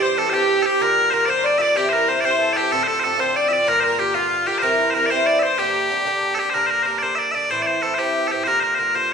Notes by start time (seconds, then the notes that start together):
Already playing: G2 E3 C4 G4
0.02 C5
0.16 G2 E3 C4 G4 A4
0.30 E3 C4 G4 C5
0.34 G2
0.62 C4 G4 A4
0.67 E3
0.80 G2 D3 A#3 F4 A#4
1.10 G2 D3 A#3 F4 A#4 C5
1.25 D3 A#3 F4 C5 D5
1.29 G2 C5
1.44 D5
1.58 D3 A#3 F4 D5 E5
1.75 G2 E3 C4 E4 G4
1.89 A#4 C5
2.07 G2 E3 C4 E4 C5
2.20 E4 C5 D5
2.25 G2 E3 C4 C5
2.40 A4
2.53 C4 E4 G4 D5
2.57 E3
2.71 A2 D3 C4 F4 A4
2.84 C5
2.88 A4
3.00 A2 D3 C5
3.04 C4 F4 A4
3.18 A2 D3 C4 F4 C5
3.36 D5
3.48 C4 F4 D5 E5
3.53 D3 D5
3.66 G2 D3 A#3 F4 A#4
3.80 A#4 C5
3.98 G2 D3 A#3 F4 G4
4.15 G2 D3 A#3 F4
4.46 D3 A#3 F4 G4
4.59 G2 C5
4.63 E3 C4 E4 A#4
4.90 G2 C5
4.94 E3 C4 E4 A#4
5.06 D5
5.10 G2 E3 C4 E4 C5
5.26 D5
5.39 E4 C5 E5
5.43 E3 C4
5.58 G2 D3 A#3 D4 G4
5.89 G2 D3 A#3 D4
6.06 G2 D3 A#3 D4
6.35 A#3 D4 A4
6.39 D3 G4
6.50 G2 C5
6.54 D3 A#3 D4 A#4
6.67 A#4 C5
6.83 G2 D3 A#4 C5
6.87 A#3 D4
6.98 D4 C5 D5
7.03 G2 D3 A#3
7.15 D5 E5
7.31 D4 D5 E5
7.36 D3 A#3
7.50 A2 E3 C4 E4 C5
7.62 D5
7.66 C5
7.81 A2 E3 C4 E4 A4
7.95 C4 E4 C5
7.99 A2 E3 G4
8.27 C4 E4 G4 A4
8.33 E3
8.44 G2 D3 A#3 F4 A#4 C5
8.60 A#4 C5
8.75 G2 D3 C5
8.79 A#3 F4 A#4
8.94 G2 D3 A#3 F4 C5